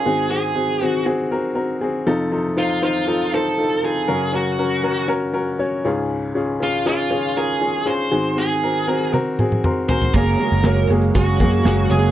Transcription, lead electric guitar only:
0.00 0.30 G#4 medium
0.31 0.83 G#4 medium
0.83 1.03 F#4 medium
2.58 2.83 F4 medium
2.84 3.30 F4 medium
3.34 3.81 A4 medium
3.85 4.31 G#4 medium
4.36 5.06 F#4 medium
6.63 6.86 F4 medium
6.88 7.34 F4 medium
7.37 7.89 G#4 medium
7.87 8.39 C5 medium
8.38 9.09 G#4 medium
9.89 10.12 C5 medium
10.15 10.86 A#4 medium
11.16 11.91 F#4 medium
11.91 12.11 G#4 medium

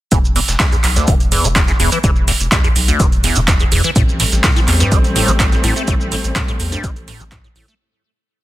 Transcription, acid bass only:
0.12 0.19 E2 medium
0.36 0.40 E2 medium
0.60 0.67 E2 medium
0.72 0.76 E2 medium
0.96 1.09 D2 medium
1.08 1.15 E3 medium
1.32 1.46 E2 medium
1.44 1.48 E3 loud
1.56 1.63 E2 medium
1.68 1.72 E2 medium
1.80 1.90 E2 loud
1.92 1.99 E3 medium
2.04 2.11 E2 loud
2.28 2.32 E2 medium
2.52 2.59 E2 medium
2.64 2.68 E2 medium
2.88 3.01 D2 medium
3.00 3.07 E3 medium
3.24 3.38 E2 medium
3.36 3.40 E3 loud
3.48 3.55 E2 medium
3.60 3.64 E2 medium
3.72 3.82 E2 loud
3.84 3.91 E3 medium
3.96 4.03 A2 loud
4.20 4.24 A2 medium
4.44 4.51 A2 medium
4.56 4.60 A2 medium
4.80 4.93 G2 medium
4.92 4.99 A3 medium
5.16 5.30 A2 medium
5.28 5.32 A3 loud
5.40 5.47 A2 medium
5.52 5.56 A2 medium
5.64 5.74 A2 loud
5.76 5.83 A3 medium
5.88 5.95 A2 loud
6.12 6.16 A2 medium
6.36 6.43 A2 medium
6.48 6.52 A2 medium
6.72 6.85 G2 medium
6.84 6.91 A3 medium
7.08 7.22 A2 medium
7.20 7.24 A3 loud
7.32 7.39 A2 medium
7.44 7.48 A2 medium
7.56 7.66 A2 loud
7.68 7.75 A3 medium

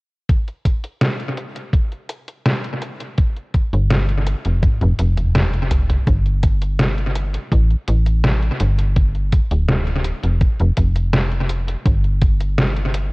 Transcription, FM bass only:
3.73 4.34 G1 loud
4.46 4.68 F1 medium
4.82 4.93 F1 loud
5.00 5.97 F1 medium
6.07 7.38 G1 medium
7.52 7.75 A1 loud
7.89 8.50 A1 medium
8.61 9.40 G1 loud
9.51 10.13 D1 loud
10.24 10.46 F1 medium
10.60 10.71 F1 loud
10.77 11.75 F1 medium
11.86 13.13 G1 medium

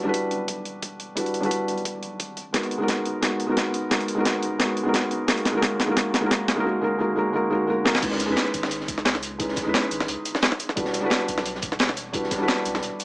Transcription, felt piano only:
0.00 0.03 G3 medium
0.00 1.14 G3 medium
0.00 0.05 D4 medium
0.00 0.06 E4 medium
0.00 0.07 F#4 medium
0.00 0.09 B4 medium
0.05 1.14 D4 medium
0.05 1.15 E4 medium
0.05 1.16 F#4 medium
0.09 1.16 B4 loud
1.15 1.39 G3 medium
1.15 1.40 D4 medium
1.15 1.41 E4 medium
1.15 1.41 F#4 medium
1.15 1.42 B4 medium
1.41 2.35 G3 medium
1.41 2.35 D4 medium
1.41 2.36 E4 medium
1.45 2.37 F#4 medium
1.45 2.37 B4 loud
2.53 2.76 G#3 medium
2.53 2.78 B3 medium
2.53 2.78 D#4 medium
2.53 2.78 F#4 medium
2.53 2.79 A#4 medium
2.78 3.20 G#3 medium
2.78 3.20 B3 medium
2.78 3.21 D#4 medium
2.82 3.22 F#4 medium
2.82 3.22 A#4 medium
3.21 3.45 G#3 medium
3.21 3.46 B3 medium
3.21 3.47 D#4 medium
3.21 3.47 F#4 medium
3.21 3.47 A#4 medium
3.46 3.88 G#3 medium
3.46 3.89 B3 medium
3.46 3.90 D#4 medium
3.50 3.90 F#4 medium
3.50 3.91 A#4 medium
3.90 4.13 G#3 medium
3.90 4.15 B3 medium
3.90 4.15 D#4 medium
3.90 4.16 F#4 medium
3.90 4.16 A#4 medium
4.15 4.57 G#3 medium
4.15 4.58 B3 medium
4.15 4.58 D#4 medium
4.19 4.59 F#4 medium
4.19 4.60 A#4 loud
4.58 4.82 G#3 medium
4.58 4.83 B3 medium
4.58 4.84 D#4 medium
4.58 4.84 F#4 medium
4.58 4.85 A#4 medium
4.83 5.25 G#3 medium
4.83 5.26 B3 medium
4.83 5.27 D#4 medium
4.87 5.28 F#4 medium
4.87 5.28 A#4 loud
5.27 5.50 G#3 medium
5.27 5.52 A#3 medium
5.27 5.52 D#4 medium
5.27 5.53 F#4 medium
5.27 5.53 A#4 medium
5.52 5.60 G#3 medium
5.52 5.60 A#3 medium
5.52 5.61 D#4 medium
5.56 5.62 F#4 medium
5.56 5.62 A#4 loud
5.61 5.85 G#3 medium
5.61 5.86 A#3 medium
5.61 5.87 D#4 medium
5.86 5.94 G#3 medium
5.86 5.95 A#3 medium
5.86 5.95 D#4 medium
5.90 5.96 F#4 medium
5.90 5.97 A#4 loud
5.95 6.19 G#3 medium
5.95 6.20 A#3 medium
5.95 6.21 D#4 medium
5.95 6.21 F#4 medium
6.20 6.28 G#3 medium
6.20 6.29 A#3 medium
6.20 6.30 D#4 medium
6.25 6.30 F#4 medium
6.25 6.31 A#4 loud
6.30 6.53 G#3 medium
6.30 6.54 A#3 medium
6.30 6.55 D#4 medium
6.30 6.56 F#4 medium
6.55 6.62 G#3 medium
6.55 6.63 A#3 medium
6.55 6.64 D#4 medium
6.59 6.65 F#4 medium
6.59 6.65 A#4 loud
6.64 6.80 G#3 medium
6.64 6.80 A#3 medium
6.64 6.81 D#4 medium
6.64 6.82 F#4 medium
6.64 6.82 A#4 medium
6.81 6.97 G#3 medium
6.81 6.98 A#3 medium
6.81 6.98 D#4 medium
6.81 6.99 F#4 medium
6.81 6.99 A#4 medium
6.99 7.14 G#3 medium
6.99 7.15 A#3 medium
6.99 7.16 D#4 medium
6.99 7.16 F#4 medium
6.99 7.16 A#4 medium
7.16 7.31 G#3 medium
7.16 7.32 A#3 medium
7.16 7.33 D#4 medium
7.16 7.33 F#4 medium
7.16 7.33 A#4 medium
7.33 7.48 G#3 medium
7.33 7.49 A#3 medium
7.33 7.50 D#4 medium
7.33 7.50 F#4 medium
7.33 7.51 A#4 medium
7.50 7.65 G#3 medium
7.50 7.66 A#3 medium
7.50 7.67 D#4 medium
7.50 7.67 F#4 medium
7.50 7.68 A#4 medium
7.67 7.83 G#3 medium
7.67 7.83 A#3 medium
7.67 7.84 D#4 medium
7.67 7.85 F#4 medium
7.67 7.85 A#4 medium
7.84 8.00 G#3 medium
7.84 8.01 A#3 medium
7.84 8.01 D#4 medium
7.84 8.02 F#4 medium
7.84 8.02 A#4 loud
8.01 8.25 G#3 medium
8.01 8.26 C#4 medium
8.01 8.27 D#4 medium
8.01 8.27 E4 medium
8.01 8.28 B4 medium
8.26 9.37 G#3 medium
8.26 9.37 C#4 medium
8.26 9.38 D#4 medium
8.30 9.39 E4 medium
8.30 9.39 B4 loud
9.38 9.62 G#3 medium
9.38 9.63 C#4 medium
9.38 9.64 D#4 medium
9.38 9.64 E4 medium
9.38 9.65 B4 medium
9.63 10.74 G#3 medium
9.63 10.74 C#4 medium
9.63 10.75 D#4 medium
9.67 10.75 E4 medium
9.67 10.76 B4 loud
10.76 10.99 G3 medium
10.76 11.00 D4 medium
10.76 11.01 E4 medium
10.76 11.01 F#4 medium
10.76 11.02 B4 medium
11.00 12.11 G3 loud
11.00 12.11 D4 medium
11.00 12.12 E4 medium
11.05 12.13 F#4 medium
11.05 12.13 B4 loud
12.13 12.36 G3 medium
12.13 12.37 D4 medium
12.13 12.38 E4 medium
12.13 12.38 F#4 medium
12.13 12.39 B4 medium
12.38 13.04 G3 loud
12.38 13.04 D4 medium
12.38 13.04 E4 medium
12.42 13.04 F#4 medium
12.42 13.04 B4 loud

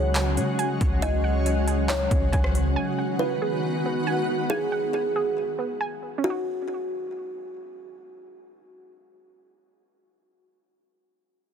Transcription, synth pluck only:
0.00 1.24 G#4 medium
0.00 0.81 F#5 medium
0.00 0.58 G#5 loud
0.37 1.68 C#4 medium
0.59 1.01 G#5 loud
1.03 2.31 G#5 loud
1.24 2.55 F#5 medium
1.67 2.76 G#4 medium
2.11 2.76 C#4 medium
2.32 2.75 G#5 medium
2.76 4.06 G#5 loud
2.99 4.29 F#5 medium
3.42 4.72 G#4 medium
3.86 5.16 B3 medium
4.07 4.49 G#5 medium
4.50 5.79 G#5 loud
4.72 6.03 F#5 medium
5.16 6.24 G#4 medium
5.58 6.24 B3 medium
5.81 6.24 G#5 medium
6.18 10.48 C#4 medium
6.24 10.54 D#4 medium
6.30 10.60 F#4 medium

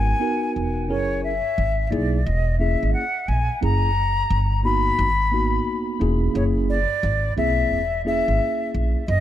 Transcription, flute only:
0.00 0.52 G#5 medium
0.90 1.21 C#5 medium
1.24 1.87 E5 medium
1.87 2.27 D5 medium
1.87 1.92 E5 medium
2.26 2.58 D#5 medium
2.59 2.91 E5 medium
2.94 3.30 F#5 medium
3.28 3.62 G#5 medium
3.63 4.61 A#5 loud
4.64 5.97 B5 loud
6.36 6.44 C#5 medium
6.70 7.33 D5 medium
7.38 8.02 E5 loud
8.07 8.71 E5 medium
9.08 9.20 D#5 loud

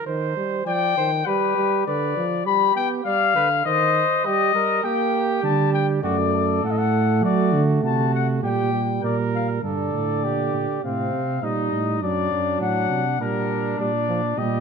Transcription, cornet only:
0.67 1.28 G5 loud
1.26 1.86 B4 medium
1.86 2.44 D5 medium
2.46 2.75 B5 medium
2.76 2.89 G5 medium
3.05 3.64 F5 medium
3.65 4.24 D#5 loud
4.25 4.83 D#5 medium
4.84 5.42 G5 medium
5.44 5.72 A5 medium
5.73 5.87 G5 medium
6.03 6.63 D5 medium
6.64 6.72 F#5 medium
6.71 6.79 D#5 medium
6.78 7.24 F#5 medium
7.25 7.62 D5 medium
7.85 8.12 A5 medium
8.15 8.28 F#5 medium
8.44 9.02 G5 medium
9.04 9.17 D5 medium
9.35 9.48 F5 medium
9.64 10.80 D5 medium
10.84 11.45 F5 medium
11.44 12.03 D#5 medium
12.03 12.60 D5 medium
12.61 13.19 F#5 medium
13.21 13.78 A#4 medium
13.79 14.39 D5 medium
14.38 14.60 D#5 medium

